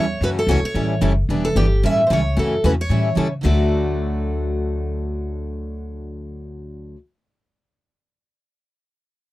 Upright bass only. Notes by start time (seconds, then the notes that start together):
Already playing: E2
0.21 F#2
0.47 C#2
0.62 muted upright bass stroke
0.74 A1
1.01 F#1
1.29 E1
1.55 G1
1.84 A1
2.10 C#2
2.37 F#2
2.64 E2
2.90 A2
3.17 C#3
3.44 D2